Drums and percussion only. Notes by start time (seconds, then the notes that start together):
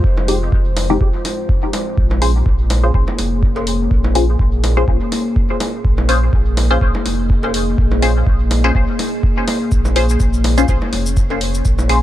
0.04 kick
0.17 low bongo
0.28 open hi-hat
0.52 kick
0.77 open hi-hat, low bongo
1.01 kick
1.25 open hi-hat, low bongo
1.49 kick
1.73 open hi-hat, low bongo
1.98 kick
2.11 low bongo
2.22 open hi-hat
2.46 kick
2.70 open hi-hat, low bongo
2.94 kick
3.08 low bongo
3.18 open hi-hat, low bongo
3.43 kick
3.56 cowbell
3.67 open hi-hat
3.91 kick
4.04 low bongo
4.15 open hi-hat
4.39 kick
4.64 open hi-hat, low bongo
4.88 kick
5.12 open hi-hat, low bongo
5.36 kick
5.60 open hi-hat, low bongo
5.85 kick
5.98 low bongo
6.09 open hi-hat
6.33 kick
6.57 open hi-hat, low bongo
6.81 kick
6.95 low bongo
7.06 open hi-hat, low bongo
7.30 kick
7.43 cowbell
7.54 open hi-hat
7.78 kick
7.91 low bongo
8.02 open hi-hat
8.27 kick
8.51 open hi-hat, low bongo
8.75 kick
8.99 open hi-hat, low bongo
9.23 kick
9.48 open hi-hat, low bongo
9.72 kick, shaker
9.85 low bongo, shaker
9.96 open hi-hat
10.09 shaker
10.20 kick, shaker
10.34 shaker
10.44 open hi-hat, low bongo
10.58 shaker
10.68 kick, shaker
10.82 low bongo
10.93 open hi-hat, low bongo
11.06 shaker
11.17 kick, shaker
11.30 cowbell
11.41 open hi-hat
11.54 shaker
11.65 kick, shaker
11.79 low bongo, shaker
11.89 open hi-hat